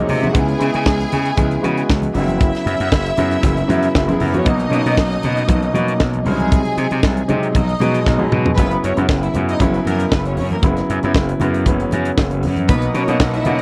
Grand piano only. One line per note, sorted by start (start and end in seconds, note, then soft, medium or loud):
0.00 0.21 C3 medium
0.00 0.22 F#3 medium
0.00 0.23 G#3 medium
0.00 0.36 A#3 loud
0.00 0.23 D#4 loud
0.21 0.30 C3 medium
0.21 0.31 F#3 medium
0.21 0.31 G#3 medium
0.21 0.31 D#4 medium
0.32 0.52 C#3 medium
0.32 0.52 G#3 medium
0.32 0.53 B3 medium
0.32 0.53 E4 medium
0.58 1.14 C#3 medium
0.58 1.14 G#3 medium
0.58 1.14 B3 medium
0.58 1.15 E4 loud
1.37 1.56 C#3 medium
1.37 1.56 G#3 medium
1.37 1.56 B3 medium
1.37 1.56 E4 medium
1.62 1.99 C#3 medium
1.62 2.00 G#3 medium
1.62 2.00 B3 medium
1.62 2.00 F#4 medium
2.13 2.97 C#3 medium
2.13 2.97 F#3 medium
2.13 2.97 B3 medium
2.13 2.21 D#4 medium
2.21 3.00 E4 medium
3.17 3.54 C#3 medium
3.17 3.54 F#3 medium
3.17 3.54 B3 medium
3.17 3.55 E4 loud
3.68 3.96 C#3 medium
3.68 3.96 F#3 medium
3.68 3.96 B3 medium
3.68 3.96 E4 loud
4.07 4.25 C#3 medium
4.07 4.26 F#3 medium
4.07 4.26 B3 medium
4.07 4.26 E4 loud
4.32 4.42 C#3 medium
4.32 4.42 F#3 medium
4.32 4.42 B3 medium
4.32 4.43 F#4 medium
4.45 4.64 B2 medium
4.45 4.64 F#3 medium
4.45 4.64 A#3 medium
4.45 4.65 D#4 medium
4.70 5.25 B2 medium
4.70 5.25 F#3 medium
4.70 5.26 A#3 medium
4.70 5.26 C#4 medium
5.47 5.67 B2 medium
5.47 5.67 F#3 medium
5.47 5.67 A#3 medium
5.47 5.68 D#4 medium
5.73 6.11 B2 medium
5.73 6.11 F#3 medium
5.73 6.11 A#3 medium
5.73 6.11 D#4 medium
6.25 6.32 B2 medium
6.25 7.08 F#3 medium
6.25 7.09 G#3 medium
6.25 7.09 D#4 medium
6.31 7.11 C3 medium
7.28 7.54 C3 medium
7.28 7.55 F#3 medium
7.28 7.55 G#3 medium
7.28 7.55 D#4 loud
7.80 8.07 B2 medium
7.80 8.08 F#3 medium
7.80 8.08 G#3 medium
7.80 8.08 D#4 medium
8.18 8.37 B2 medium
8.18 8.37 F#3 medium
8.18 8.37 G#3 medium
8.18 8.37 D#4 medium
8.45 8.54 B2 medium
8.45 8.54 F#3 medium
8.45 8.54 G#3 medium
8.45 8.54 D#4 medium
8.58 8.85 C#3 medium
8.58 8.85 F#3 medium
8.58 8.86 B3 medium
8.58 8.86 E4 medium
8.96 9.23 C#3 medium
8.96 9.24 F#3 medium
8.96 9.24 B3 medium
8.96 9.24 E4 medium
9.35 9.53 C#3 medium
9.35 9.53 F#3 medium
9.35 9.53 B3 medium
9.35 9.54 E4 medium
9.60 10.33 C#3 medium
9.60 10.33 F#3 medium
9.60 10.33 B3 medium
9.60 10.34 E4 loud
10.63 10.90 C#3 medium
10.63 10.90 F#3 medium
10.63 10.91 B3 medium
10.63 10.91 E4 medium
11.02 11.29 C#3 medium
11.02 11.29 F#3 medium
11.02 11.30 B3 medium
11.02 11.30 E4 medium
11.40 11.59 C#3 medium
11.40 11.59 F#3 medium
11.40 11.59 B3 medium
11.40 11.60 E4 medium
11.65 12.38 C#3 medium
11.65 12.39 F#3 medium
11.65 12.39 B3 medium
11.65 12.39 C#4 loud
12.69 12.96 B2 medium
12.69 12.96 F#3 medium
12.69 12.96 A#3 medium
12.69 12.97 D#4 medium
13.08 13.35 B2 medium
13.08 13.35 F#3 medium
13.08 13.35 A#3 medium
13.08 13.36 D#4 medium
13.45 13.62 B2 medium
13.45 13.62 F#3 medium
13.45 13.62 A#3 medium
13.45 13.62 C#4 medium